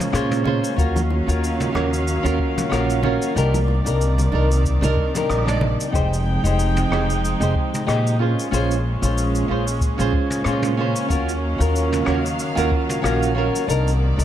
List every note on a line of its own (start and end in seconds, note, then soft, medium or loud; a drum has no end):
0.00 0.74 G#3 medium
0.00 5.89 A#3 medium
0.00 0.74 C#4 medium
0.00 0.10 G#4 medium
0.00 0.11 C5 loud
0.00 cabasa medium
0.12 0.58 A#2 medium
0.12 0.42 C#4 loud
0.12 0.42 F4 medium
0.12 0.43 G#4 medium
0.12 0.43 C5 loud
0.12 cross-stick medium
0.12 cabasa medium
0.31 mid tom medium
0.31 cabasa medium
0.44 0.74 C#4 medium
0.44 0.74 F4 medium
0.44 0.75 G#4 medium
0.44 0.75 C5 loud
0.44 low conga medium
0.64 cabasa medium
0.76 1.23 D#2 loud
0.76 3.34 D#3 medium
0.76 3.33 F#3 medium
0.76 0.99 C#4 medium
0.76 3.33 C#4 medium
0.76 0.99 F4 medium
0.76 1.00 F#4 medium
0.76 1.00 A#4 loud
0.76 3.33 F5 medium
0.76 kick loud
0.76 cabasa medium
0.96 high bongo medium
0.96 high conga medium
0.96 cabasa soft
1.10 high bongo medium
1.27 1.70 D#2 loud
1.27 1.70 C#4 medium
1.27 1.71 F4 medium
1.27 1.72 F#4 medium
1.27 1.72 A#4 medium
1.27 cabasa medium
1.44 cabasa medium
1.60 mid tom medium
1.60 low conga medium
1.60 cabasa medium
1.73 2.19 D#2 medium
1.73 1.88 C#4 medium
1.73 1.88 F4 medium
1.73 1.89 F#4 medium
1.73 1.89 A#4 medium
1.73 cross-stick medium
1.73 high conga medium
1.94 cabasa medium
2.08 cabasa medium
2.23 2.36 D#2 loud
2.23 2.67 C#4 medium
2.23 2.68 F4 medium
2.23 2.68 F#4 medium
2.23 2.69 A#4 loud
2.23 cabasa soft
2.39 kick loud
2.58 mid tom medium
2.58 high conga medium
2.58 cabasa medium
2.69 3.16 A#1 medium
2.69 2.99 C#4 medium
2.69 3.00 F4 medium
2.69 3.00 F#4 medium
2.69 3.01 A#4 loud
2.69 cross-stick medium
2.69 cabasa medium
2.90 cabasa soft
3.02 3.32 C#4 medium
3.02 3.33 F4 medium
3.02 3.33 F#4 medium
3.02 3.33 A#4 loud
3.02 low conga medium
3.22 cabasa medium
3.35 3.81 C2 loud
3.35 5.92 C3 medium
3.35 5.91 D#3 medium
3.35 5.92 G3 medium
3.35 3.57 D4 medium
3.35 3.57 D#4 medium
3.35 3.58 G4 medium
3.35 3.58 A#4 loud
3.35 5.92 D5 medium
3.35 cabasa medium
3.54 high bongo medium
3.54 high conga medium
3.54 cabasa soft
3.68 high bongo medium
3.84 4.28 C2 loud
3.84 4.28 D4 medium
3.84 4.29 D#4 medium
3.84 4.30 A#4 medium
3.84 cabasa medium
4.01 high bongo soft
4.01 cabasa medium
4.18 low conga medium
4.18 cabasa medium
4.32 4.77 C2 medium
4.32 4.46 D4 medium
4.32 4.47 D#4 medium
4.32 4.48 A#4 medium
4.32 high conga medium
4.50 high bongo soft
4.50 cabasa medium
4.65 kick medium
4.65 cabasa medium
4.81 4.94 C2 loud
4.81 5.11 D4 medium
4.81 5.11 D#4 medium
4.81 5.12 A#4 loud
4.81 low conga medium
4.81 cabasa soft
4.97 kick loud
5.14 5.43 D4 medium
5.14 5.43 D#4 medium
5.14 5.44 G4 medium
5.14 5.44 A#4 medium
5.14 mid tom medium
5.14 high conga medium
5.14 cabasa medium
5.30 5.74 A#1 medium
5.30 cross-stick medium
5.30 cabasa medium
5.46 5.90 D4 medium
5.46 5.90 D#4 medium
5.46 5.91 D5 medium
5.46 mid tom medium
5.46 cabasa soft
5.61 low conga medium
5.81 cabasa medium
5.92 6.39 F1 loud
5.92 8.17 F3 medium
5.92 8.17 G#3 medium
5.92 8.17 C4 medium
5.92 6.15 D#4 medium
5.92 8.17 D#4 medium
5.92 6.15 G4 medium
5.92 6.16 G#4 medium
5.92 6.16 C5 loud
5.92 8.17 G5 medium
5.92 kick loud
5.92 cabasa medium
6.14 cabasa soft
6.44 6.86 F1 loud
6.44 6.87 D#4 medium
6.44 6.87 G4 medium
6.44 6.88 G#4 medium
6.44 6.88 C5 medium
6.44 cabasa medium
6.59 cabasa medium
6.77 mid tom medium
6.77 cabasa medium
6.90 7.35 F1 medium
6.90 7.04 D#4 medium
6.90 7.05 G4 medium
6.90 7.05 G#4 medium
6.90 7.06 C5 medium
6.90 cross-stick medium
7.10 cabasa medium
7.25 cabasa medium
7.40 7.52 F1 loud
7.40 7.84 D#4 medium
7.40 7.84 G4 medium
7.40 7.84 G#4 medium
7.40 7.85 C5 loud
7.40 cabasa soft
7.55 kick loud
7.74 mid tom medium
7.74 cabasa medium
7.87 8.32 A#2 medium
7.87 8.16 D#4 loud
7.87 8.16 G4 medium
7.87 8.17 G#4 medium
7.87 8.17 C5 loud
7.87 cross-stick medium
7.87 cabasa medium
8.07 cabasa soft
8.19 11.07 G#3 medium
8.19 14.24 A#3 medium
8.19 8.48 C#4 medium
8.19 13.64 C#4 medium
8.19 8.49 F4 medium
8.19 8.49 G#4 medium
8.19 8.50 C5 medium
8.39 cabasa medium
8.51 8.97 A#1 loud
8.51 8.73 C#4 medium
8.51 8.74 F4 medium
8.51 8.74 G#4 medium
8.51 8.75 C5 loud
8.51 cabasa medium
8.71 cabasa soft
9.02 9.44 A#1 medium
9.02 9.45 C#4 medium
9.02 9.46 F4 medium
9.02 9.46 G#4 medium
9.02 9.47 C5 medium
9.02 cabasa medium
9.18 cabasa medium
9.35 cabasa soft
9.48 9.94 A#1 medium
9.48 9.63 C#4 medium
9.48 9.63 F4 medium
9.48 9.64 G#4 medium
9.48 9.64 C5 medium
9.68 cabasa medium
9.81 kick loud
9.81 cabasa medium
9.98 10.10 A#1 loud
9.98 10.42 C#4 loud
9.98 10.42 F4 medium
9.98 10.43 G#4 medium
9.98 10.43 C5 loud
9.98 cabasa soft
10.13 kick loud
10.30 mid tom medium
10.30 cabasa medium
10.44 10.90 A#2 medium
10.44 10.74 C#4 loud
10.44 10.75 F4 medium
10.44 10.75 G#4 medium
10.44 10.75 C5 loud
10.44 cross-stick medium
10.44 cabasa medium
10.62 mid tom medium
10.62 cabasa medium
10.77 11.06 C#4 medium
10.77 11.07 F4 medium
10.77 11.07 G#4 medium
10.77 11.08 C5 loud
10.96 cabasa medium
11.08 11.55 D#2 loud
11.08 13.65 D#3 medium
11.08 13.65 F#3 medium
11.08 11.31 C#4 medium
11.08 11.31 F4 medium
11.08 11.32 F#4 medium
11.08 11.33 A#4 loud
11.08 13.65 F5 medium
11.08 kick loud
11.08 cabasa medium
11.29 cabasa medium
11.58 12.02 D#2 loud
11.58 12.02 C#4 medium
11.58 12.03 F4 medium
11.58 12.04 F#4 medium
11.58 12.04 A#4 medium
11.58 cabasa medium
11.76 cabasa medium
11.92 mid tom medium
11.92 cabasa medium
12.05 12.52 D#2 medium
12.05 12.20 C#4 medium
12.05 12.21 F4 medium
12.05 12.21 F#4 medium
12.05 12.22 A#4 medium
12.05 cross-stick medium
12.26 cabasa medium
12.39 cabasa medium
12.55 12.69 D#2 loud
12.55 12.99 C#4 loud
12.55 13.00 F4 medium
12.55 13.00 F#4 medium
12.55 13.01 A#4 loud
12.55 cabasa medium
12.71 kick loud
12.89 mid tom medium
12.89 cabasa medium
13.02 13.48 A#1 medium
13.02 13.32 C#4 medium
13.02 13.32 F4 medium
13.02 13.33 F#4 medium
13.02 13.33 A#4 loud
13.02 cross-stick medium
13.02 cabasa medium
13.23 cabasa medium
13.35 13.64 C#4 medium
13.35 13.65 F4 medium
13.35 13.65 F#4 medium
13.35 13.66 A#4 loud
13.56 cabasa medium
13.67 14.13 C2 loud
13.67 14.24 C3 medium
13.67 14.24 D#3 medium
13.67 14.24 G3 medium
13.67 13.89 D4 medium
13.67 13.90 D#4 medium
13.67 13.91 A#4 loud
13.67 14.24 D5 medium
13.67 cabasa medium
13.88 cabasa soft
14.16 14.24 C2 loud
14.16 14.24 D4 medium
14.16 14.24 D#4 medium
14.16 14.24 A#4 medium
14.16 cabasa medium